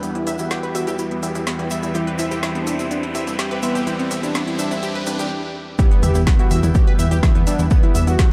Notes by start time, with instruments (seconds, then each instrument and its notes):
Already playing: synth drone E2 E3, analog synth pad E4 G4 B4 G5, riser
0.03 analog polysynth E3 G3 B3, synth pluck B3, closed hi-hat, shaker
0.15 analog synth lead E4, synth pluck E4, closed hi-hat, mid tom
0.27 analog synth bass E2, synth pluck E5, open hi-hat, shaker
0.39 analog synth bass E2, synth pluck E4, analog synth lead F#4, closed hi-hat, shaker
0.51 synth pluck G4, snare, closed hi-hat, shaker
0.63 synth pluck B4, closed hi-hat
0.75 analog synth bass E2, analog synth lead F#4, synth pluck E5, open hi-hat, mid tom, shaker
0.87 analog synth bass E2, synth pluck G4, closed hi-hat, shaker
0.99 synth pluck E4, closed hi-hat, shaker
1.11 synth pluck B3, closed hi-hat
1.23 analog synth bass E2, analog synth lead G4, synth pluck E5, open hi-hat, shaker
1.35 analog synth bass E2, synth pluck E4, closed hi-hat, mid tom, shaker
1.47 synth pluck B3, snare, closed hi-hat, shaker
1.59 analog synth bass E2, synth pluck E4, closed hi-hat
1.71 analog polysynth E3 G3 B3, synth pluck E5, open hi-hat, shaker
1.83 analog synth bass E2, synth pluck E4, closed hi-hat, shaker
1.94 analog polysynth E3 G3 C4, analog synth pad E4 C5, analog synth lead E4, synth pluck G4, closed hi-hat, mid tom, shaker
2.07 synth pluck B4, closed hi-hat
2.19 analog synth bass C2, analog synth lead E4, synth pluck E5, open hi-hat, shaker
2.31 analog synth bass C2, synth pluck G4, closed hi-hat, shaker
2.43 synth pluck E4, snare, closed hi-hat, shaker
2.55 synth pluck B3, analog synth lead D4, closed hi-hat, mid tom
2.67 analog synth bass C2, synth pluck E5, open hi-hat, shaker
2.79 analog synth bass C2, synth pluck E4, closed hi-hat, shaker
2.91 synth pluck B3, analog synth lead D4, closed hi-hat, shaker
3.03 synth pluck E4, closed hi-hat
3.15 analog synth bass C2, synth pluck E5, open hi-hat, mid tom, shaker
3.27 analog synth bass C2, synth pluck E4, closed hi-hat, shaker
3.39 synth pluck G4, snare, closed hi-hat, shaker
3.51 analog synth bass C2, synth pluck B4, closed hi-hat
3.62 analog polysynth E3 G3 C4, analog synth lead B3, synth pluck E5, open hi-hat, shaker
3.75 analog synth bass C2, synth pluck G4, closed hi-hat, mid tom, shaker
3.87 analog polysynth E3 G3 C4, synth pluck E4, closed hi-hat, shaker
3.99 synth pluck B3, analog synth lead C4, closed hi-hat
4.11 analog synth bass C2, synth pluck E5, open hi-hat, shaker
4.23 analog synth bass C2, analog synth lead D4, synth pluck E4, closed hi-hat, shaker
4.34 synth pluck B3, snare, closed hi-hat, mid tom, shaker
4.47 synth pluck E4, closed hi-hat
4.58 analog synth bass C2, analog synth lead D4, synth pluck E5, open hi-hat, shaker
4.71 analog synth bass C2, synth pluck E4, closed hi-hat, shaker
4.83 synth pluck G4, closed hi-hat, shaker
4.95 synth pluck B4, closed hi-hat, mid tom
5.06 analog synth bass C2, analog synth lead D4, synth pluck B4, open hi-hat, shaker
5.19 analog synth bass C2, synth pluck G4, closed hi-hat, shaker
5.79 analog polysynth E3 G3 B3, analog synth pad E4 G4 B4 G5, synth pluck E4 E5, analog synth lead G4, kick, closed hi-hat, impact, shaker
5.91 synth pluck B3 B4, closed hi-hat
6.03 analog synth bass E2, analog synth lead G4, synth pluck E5 E6, open hi-hat, mid tom, shaker
6.15 analog synth bass E2, synth pluck E4 E5, closed hi-hat, shaker
6.27 synth pluck B3 B4, kick, snare, closed hi-hat, shaker
6.39 synth pluck E4 E5, analog synth lead F#4, closed hi-hat
6.51 analog synth bass E2, synth pluck E5 E6, open hi-hat, shaker
6.63 analog synth bass E2, synth pluck E4 E5, closed hi-hat, mid tom, shaker
6.74 analog synth lead F#4, synth pluck G4 G5, kick, closed hi-hat, shaker
6.87 synth pluck B4 B5, closed hi-hat
6.99 analog synth bass E2, synth pluck E5 E6, open hi-hat, shaker
7.11 analog synth bass E2, synth pluck G4 G5, closed hi-hat, shaker
7.23 synth pluck E4 E5, kick, snare, closed hi-hat, mid tom, shaker
7.35 analog synth bass E2, synth pluck B3 B4, closed hi-hat
7.47 analog polysynth E3 G3 B3, analog synth lead D4, synth pluck E5 E6, open hi-hat, shaker
7.59 analog synth bass E2, synth pluck E4 E5, closed hi-hat, shaker
7.71 analog polysynth E3 G3 B3, synth pluck B3 B4, analog synth pad F#5, kick, closed hi-hat, shaker
7.83 analog synth lead E4, synth pluck E4 E5, closed hi-hat, mid tom
7.95 analog synth bass E2, synth pluck E5 E6, open hi-hat, shaker
8.07 analog synth bass E2, synth pluck E4 E5, analog synth lead F#4, closed hi-hat, shaker
8.19 synth pluck G4 G5, kick, snare, closed hi-hat, shaker